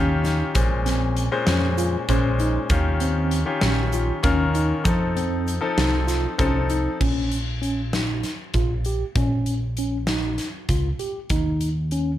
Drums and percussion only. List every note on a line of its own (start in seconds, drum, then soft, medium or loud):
0.24 snare soft
0.24 closed hi-hat medium
0.24 shaker soft
0.55 kick loud
0.55 closed hi-hat medium
0.55 shaker medium
0.86 snare soft
0.86 closed hi-hat medium
1.17 closed hi-hat medium
1.47 snare loud
1.47 closed hi-hat medium
1.78 closed hi-hat medium
1.78 shaker medium
2.09 kick medium
2.09 closed hi-hat medium
2.09 shaker soft
2.39 closed hi-hat medium
2.39 shaker soft
2.70 kick loud
2.70 closed hi-hat medium
2.70 shaker soft
3.00 closed hi-hat medium
3.31 closed hi-hat medium
3.61 snare loud
3.61 closed hi-hat medium
3.92 closed hi-hat medium
3.92 shaker soft
4.23 kick loud
4.23 closed hi-hat medium
4.23 shaker soft
4.54 closed hi-hat medium
4.54 shaker soft
4.85 kick loud
4.85 closed hi-hat medium
4.85 shaker medium
5.17 closed hi-hat medium
5.47 closed hi-hat medium
5.47 shaker soft
5.77 snare loud
5.77 closed hi-hat medium
5.77 shaker soft
6.08 snare soft
6.08 closed hi-hat medium
6.08 shaker medium
6.38 kick medium
6.38 closed hi-hat medium
6.38 shaker soft
6.69 closed hi-hat medium
6.69 shaker soft
7.01 kick medium
7.01 crash medium
7.32 closed hi-hat medium
7.63 closed hi-hat medium
7.93 snare medium
7.93 closed hi-hat medium
8.23 snare soft
8.23 closed hi-hat medium
8.54 kick medium
8.54 closed hi-hat medium
8.85 closed hi-hat soft
9.15 kick medium
9.15 closed hi-hat medium
9.46 closed hi-hat medium
9.77 closed hi-hat medium
10.07 snare medium
10.07 closed hi-hat medium
10.38 snare soft
10.38 closed hi-hat medium
10.69 kick medium
10.69 closed hi-hat medium
10.99 closed hi-hat soft
11.30 kick medium
11.30 closed hi-hat medium
11.61 closed hi-hat medium
11.91 closed hi-hat soft